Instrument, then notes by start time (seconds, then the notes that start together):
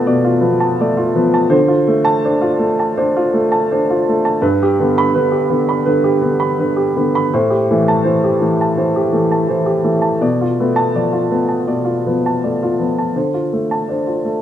upright piano
Already playing: B2 F3 A3 B3 F4 D5 A5
0.07 B2 D5
0.24 F4
0.41 F3 B3
0.60 A5
0.80 A3 D5
0.97 F4
1.15 F3 B3
1.34 A5
1.49 D3 C5
1.68 F4
1.87 A3
2.05 A5
2.24 D4 C5
2.41 F4
2.59 A3
2.79 A5
2.97 D4 C5
3.17 F4
3.33 A3
3.52 A5
3.71 D4 C5
3.90 F4
4.09 A3
4.25 A5
4.42 G2 B4
4.63 G4
4.80 D3 B3
4.98 B5
5.15 D3 B4
5.32 G4
5.50 D3 B3
5.69 B5
5.86 D3 B4
6.04 G4
6.21 D3 B3
6.40 B5
6.59 D3 B4
6.77 G4
6.97 D3 B3
7.15 B5
7.34 A2 C5
7.50 G4
7.71 E3 A3
7.88 A5
8.04 E3 C5
8.24 G4
8.41 E3 A3
8.61 A5
8.78 E3 C5
8.96 G4
9.12 E3 A3
9.32 A5
9.48 E3 C5
9.66 G4
9.84 E3 A3
10.02 A5
10.21 B2 D5
10.41 F4
10.60 A3 B3
10.76 A5
10.95 F3 D5
11.13 F4
11.30 A3 B3
11.48 A5
11.67 B2 D5
11.85 F4
12.06 F3 B3
12.26 A5
12.44 A3 D5
12.63 F4
12.79 F3 B3
12.98 A5
13.16 D3 C5
13.34 F4
13.53 A3
13.71 A5
13.89 D4 C5
14.07 F4
14.25 A3